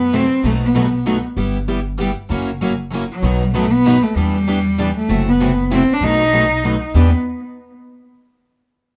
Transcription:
Already playing: upright bass F#2, cello B3
0.13 steel-string acoustic guitar C3 E3 F#3 A3 C4 E4 F#4 A4, cello C4
0.43 upright bass B1, steel-string acoustic guitar B2 F#3 A3 D#4 F#4 B4, cello A3
0.65 cello B3
0.75 steel-string acoustic guitar B2 F#3 A3 D#4 F#4 B4
1.06 steel-string acoustic guitar B2 F#3 A3 D#4 F#4 B4
1.37 upright bass G1, steel-string acoustic guitar G3 B3 E4 G4
1.68 steel-string acoustic guitar G3 B3 E4 G4
1.98 steel-string acoustic guitar G3 B3 E4 G4
2.29 upright bass F#1, steel-string acoustic guitar C#3 E3 F#3 A#3 C#4 E4 F#4 A#4
2.61 steel-string acoustic guitar C#3 E3 F#3 A#3 C#4 E4 F#4 A#4
2.90 steel-string acoustic guitar C#3 E3 F#3 A#3 C#4 E4 A#4
2.95 steel-string acoustic guitar F#4
3.12 cello F#3
3.22 upright bass B1, steel-string acoustic guitar B2 D#3 F#3 B3 D#4 F#4 B4
3.43 cello G3
3.54 steel-string acoustic guitar B2 D#3 F#3 B3 D#4 F#4 B4, cello A3
3.72 cello B3
3.85 steel-string acoustic guitar B2 D#3 F#3 B3 D#4 F#4 B4
4.03 cello A3
4.16 upright bass E2, steel-string acoustic guitar E3 G3 B3 D4 E4 G4 B4, cello G3
4.48 steel-string acoustic guitar E3 G3 B3 D4 E4 G4 B4
4.79 steel-string acoustic guitar E3 G3 B3 D4 E4 G4 B4
4.98 cello A3
5.09 upright bass F#1, steel-string acoustic guitar C3 E3 F#3 A3 C4 E4 F#4 A4
5.29 cello B3
5.40 steel-string acoustic guitar C3 E3 F#3 A3 C4 E4 F#4 A4
5.70 steel-string acoustic guitar C3 E3 F#3 A3 C4 E4 F#4 A4, cello C4
5.93 cello D4
6.01 upright bass B1, steel-string acoustic guitar B2 F#3 A3 D#4 F#4 B4, cello D#4
6.32 steel-string acoustic guitar B2 F#3 A3 D#4 F#4 B4
6.64 steel-string acoustic guitar B2 F#3 A3 D#4 F#4 B4
6.94 upright bass E2, steel-string acoustic guitar E3 G3 B3 D4 E4 G4 B4, cello B3

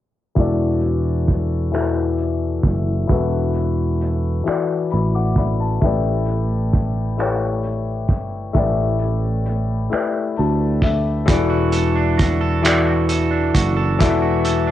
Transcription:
0.35 fretless electric bass E1, grand piano E3 E4 F#4 A4, kick, closed hi-hat
0.40 grand piano D5
0.81 closed hi-hat
1.28 kick, closed hi-hat
1.72 grand piano E3 E4 F#4 A4, finger snap, closed hi-hat
1.76 grand piano E5
2.18 closed hi-hat
2.63 fretless electric bass F#1, kick, closed hi-hat
3.07 fretless electric bass E1, grand piano E3 E4 F#4 A4, kick, closed hi-hat
3.12 grand piano B4
3.54 closed hi-hat
4.01 closed hi-hat
4.44 grand piano E3 E4 F#4 A4, finger snap, muted fretless electric bass stroke, closed hi-hat
4.48 grand piano D5
4.90 fretless electric bass A1, grand piano B5, closed hi-hat
5.15 grand piano F#5 D6
5.36 grand piano D5 E5 B5, kick, closed hi-hat
5.60 grand piano A5
5.81 fretless electric bass A1, grand piano A3 E4 G4 B4, kick, closed hi-hat
5.86 grand piano D5
6.26 closed hi-hat
6.73 kick, closed hi-hat
7.17 grand piano A3 E4 G4 B4, finger snap, closed hi-hat
7.22 grand piano C#5
7.63 closed hi-hat
8.09 fretless electric bass G1, kick, closed hi-hat
8.53 fretless electric bass A1, grand piano A3 E4 G4 B4, kick, closed hi-hat
8.58 grand piano D5
8.99 closed hi-hat
9.46 closed hi-hat
9.90 grand piano A3 E4 G4 B4, finger snap, muted fretless electric bass stroke, closed hi-hat
9.94 grand piano D5
10.36 fretless electric bass D2, grand piano A5, closed hi-hat
10.82 grand piano E5, kick, closed hi-hat
11.26 fretless electric bass E1, grand piano E3 E4 F#4 G#4, clean electric guitar E3, kick, closed hi-hat
11.30 grand piano D5
11.36 grand piano A4
11.50 clean electric guitar F#4
11.72 clean electric guitar A4, closed hi-hat
11.95 clean electric guitar D4
12.18 clean electric guitar F#4, kick, closed hi-hat
12.41 clean electric guitar A4
12.62 grand piano E3 E4 F#4 A4, clean electric guitar E3, finger snap, closed hi-hat
12.67 grand piano D5
12.87 clean electric guitar F#4
13.09 clean electric guitar A4, closed hi-hat
13.31 clean electric guitar D4
13.54 fretless electric bass F#1, clean electric guitar F#4, kick, closed hi-hat
13.77 clean electric guitar A4
13.99 fretless electric bass E1, grand piano E3 E4 F#4 A4, clean electric guitar E3, kick, closed hi-hat
14.03 grand piano D5
14.10 grand piano E5
14.22 clean electric guitar F#4
14.45 clean electric guitar A4, closed hi-hat
14.67 clean electric guitar D4

